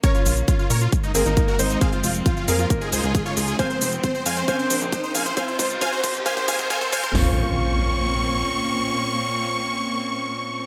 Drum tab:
HH |xxoxx-oxxxoxx-ox|xxoxx-oxxxo-x-ox|xxoxx-oxxxoxx-ox|xxoxx-oxxxo-x-o-|
SH |xxxxxxxxxxxxxxxx|xxxxxxxxxxxxxxxx|xxxxxxxxxxxxxxxx|xxxxxxxxxxxxxxxx|
SD |----------------|----------------|----------------|----------------|
FT |----------------|----------------|----------------|----------------|
BD |o---o---o---o---|o---o---o---o---|o---o---o---o---|o-o-o-o-oooooooo|

HH |o---------------|----------------|
SH |----------------|----------------|
SD |o---------------|----------------|
FT |o---------------|----------------|
BD |----------------|----------------|